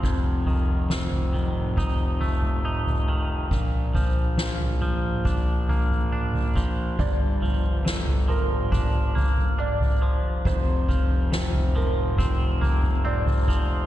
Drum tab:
SD |----o-----------|----o-----------|----o-----------|----o-----------|
T2 |------o----o----|------o----o----|------o----o----|------o----o----|
FT |o-o--o--o-o--o--|o-o--o--o-o--o--|o-o--o--o-o--o--|o-o--o--o-o--o--|
BD |o-------o-------|o-o-----o-----o-|o-------o-------|o-o-----o-----o-|